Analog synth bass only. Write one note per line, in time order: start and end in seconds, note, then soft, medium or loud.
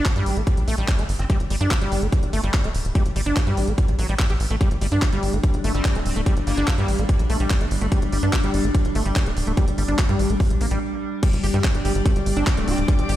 0.16 0.23 G2 medium
0.26 0.33 A1 loud
0.37 0.43 A1 medium
0.57 0.64 A#1 medium
0.68 0.74 A#1 loud
0.78 0.85 A#1 medium
0.99 1.05 G1 medium
1.09 1.16 G1 loud
1.19 1.26 G1 medium
1.40 1.47 G1 medium
1.50 1.57 G1 medium
1.61 1.67 G2 loud
1.81 1.88 G1 medium
1.92 1.98 G1 loud
2.02 2.09 G1 medium
2.23 2.29 G1 medium
2.33 2.40 G1 loud
2.43 2.50 G1 medium
2.64 2.71 D1 medium
2.75 2.81 D1 loud
2.85 2.91 D1 medium
3.06 3.12 G1 medium
3.16 3.23 G1 loud
3.26 3.33 G1 medium
3.47 3.54 G2 medium
3.57 3.64 A1 loud
3.68 3.74 A1 medium
3.88 3.95 A1 medium
3.99 4.05 A1 loud
4.09 4.16 A1 medium
4.30 4.36 A1 medium
4.40 4.47 A1 loud
4.50 4.57 A1 medium
4.71 4.78 G1 medium
4.81 4.88 G1 loud
4.92 4.98 G2 medium
5.12 5.19 G1 medium
5.23 5.29 G1 loud
5.33 5.40 G1 medium
5.54 5.60 G1 medium
5.64 5.71 G1 loud
5.75 5.81 G1 medium
5.95 6.02 D1 medium
6.06 6.12 D1 loud
6.16 6.23 D1 loud
6.37 6.43 G1 medium
6.47 6.54 G1 loud
6.57 6.64 G1 medium
6.78 6.85 G2 medium
6.88 6.95 A1 loud
6.99 7.05 A1 medium
7.19 7.26 A#1 medium
7.30 7.36 A#1 loud
7.40 7.47 A#1 medium
7.61 7.67 G1 medium
7.71 7.78 G1 loud
7.81 7.88 G1 medium
8.02 8.09 G1 medium
8.12 8.19 G1 loud
8.23 8.29 G2 loud
8.44 8.50 G1 medium
8.54 8.60 G1 loud
8.64 8.71 G1 medium
8.85 8.92 G1 medium
8.95 9.02 G1 loud
9.06 9.12 G1 medium
9.26 9.33 D1 medium
9.37 9.43 D1 loud
9.47 9.54 D1 medium
9.68 9.74 G1 medium
9.78 9.85 G1 loud
9.88 9.95 G1 loud
10.09 10.16 G2 medium
10.19 10.26 A1 loud
10.30 10.36 A1 medium
10.50 10.57 A#1 medium
10.61 10.67 A#1 loud
10.71 10.78 A#1 medium
11.33 11.40 G1 medium
11.44 11.50 G1 loud
11.54 11.60 G2 medium
11.75 11.81 G1 medium
11.85 11.91 G1 loud
11.95 12.02 G1 medium
12.16 12.23 G1 medium
12.26 12.33 G1 loud
12.37 12.43 G1 medium
12.57 12.64 D1 medium
12.68 12.74 D1 loud
12.78 12.85 D1 loud
12.99 13.05 G1 medium
13.09 13.16 G1 loud